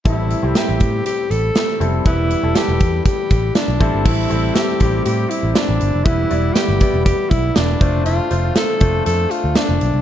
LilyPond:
<<
  \new Staff \with { instrumentName = "Alto saxophone" } { \time 4/4 \key a \minor \tempo 4 = 120 e'4 g'4 g'8 a'4 r8 | e'4 g'4 g'4 d'4 | e'4 g'4 g'8 e'8 d'4 | e'4 g'4 g'8 e'8 d'4 |
f'4 a'4 a'8 f'8 d'4 | }
  \new Staff \with { instrumentName = "Grand piano" } { \time 4/4 \key a \minor <g c' e' a'>8 r16 <g c' e' g'>4. r4 r16 <g c' e' a'>16 r16 | <g b e' b'>8 r16 <g b e' a'>4. r4 r16 <g c' e' a'>8 | <g c' e'>16 r16 <g c' e' a'>8. r16 <g c' e' g'>4. r4 | <g b e' b'>16 r16 <g b e' d''>8. r16 <g b e' d''>4. r8 <a d' f' c''>8~ |
<a d' f' c''>16 r16 <a d' f' c''>8. r16 <a d' f' c''>4. r4 | }
  \new Staff \with { instrumentName = "Grand piano" } { \clef bass \time 4/4 \key a \minor a,4. r2 r8 | e4. r2 r8 | a,4. r2 r8 | e4. r2 r8 |
r1 | }
  \new Staff \with { instrumentName = "Picked electric bass" } { \clef bass \time 4/4 \key a \minor a,,8. c,16 r16 a,,16 a,8 r8 a,,8 r8 f,,8 | e,,8. e,,16 r16 e,,16 e,8 r8 a,,8 r16 b,,16 a,,16 g,,16 | a,,8 a,,8 r8 a,,8 a,8 r16 a,,16 r16 a,,16 g,,16 f,,16 | e,,8 e,,8 r16 g,,16 r16 e,,8 r16 b,,8 e,,8 f,,8~ |
f,,8 f,,8 r8 f,,8 f,8 r16 d,16 r16 f,,16 b,,16 c,16 | }
  \new DrumStaff \with { instrumentName = "Drums" } \drummode { \time 4/4 <hh bd>8 hh8 <hh sn>8 <hh bd>8 hh8 hh8 <hh sn>8 hh8 | <hh bd>8 hh8 <hh sn>8 <hh bd>8 <hh bd>8 <hh bd>8 <hh sn>8 <hh bd>8 | <cymc bd>8 hh8 <hh sn>8 <hh bd>8 hh8 hh8 <hh sn>8 hh8 | <hh bd>8 hh8 <hh sn>8 <hh bd>8 <hh bd>8 <hh bd>8 <hh sn>8 <hh bd>8 |
hh8 hh8 <hh sn>8 <hh bd>8 hh8 hh8 <hh sn>8 hh8 | }
>>